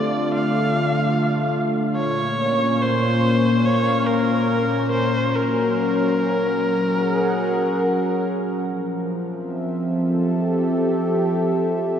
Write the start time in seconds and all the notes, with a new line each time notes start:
Already playing: D3 A3 F4 D5 F5
0.35 F5
1.96 A#2 C#5
2.29 A#3 C#4
2.82 C5
3.50 F5
3.65 C#5
4.06 A#4
4.92 C5
5.33 F#3 A#4
6.80 G#4 A#4 F#5
8.68 F3
9.26 C4 E5
9.86 A4
10.16 G4